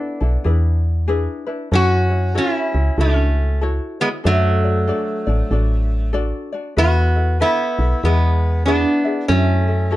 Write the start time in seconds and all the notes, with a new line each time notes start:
Already playing: B3 D4 E4 A4 B4
0.20 B1 D4 E4 A4
0.44 E2 D4 E4 G#4 B4
1.08 D4 E4 G#4 B4
1.47 D4 E4 B4
1.71 F#2 C#4 E4 F#4 A4 C#5
2.10 E4 F#4 C#5
2.34 C#4 E4 F#4 A4 C#5
2.72 C#2 E4 F#4 C#5
2.98 C#2 A3 C#4 E4 F#4 A4 C#5
3.61 E4 F#4 A4 C#5
4.00 G#3 B3 E4 F#4 C#5
4.24 F#2 F#3 A3 D4 F#4 A4 D5
4.64 D4 F#4 D5
4.87 D4 F#4 A4 D5
5.27 A1 D4 F#4 D5
5.51 A1 D4 F#4 A4 D5
6.13 D4 F#4 A4 D5
6.52 D4 F#4 D5
6.77 E2 B3 E4 F#4 A4 B4 E5
7.15 E4 A4 E5
7.40 B3 E4 A4 B4 E5
7.78 B1 E4 A4 E5
8.03 E2 G#3 B3 E4 G#4 B4 E5
8.66 B3 D4 E4 G#4 B4 E5
9.04 E4 G#4 E5
9.28 F#2 A3 C#4 E4 F#4 A4 C#5
9.67 E4 F#4 A4
9.91 E4 F#4 A4 C#5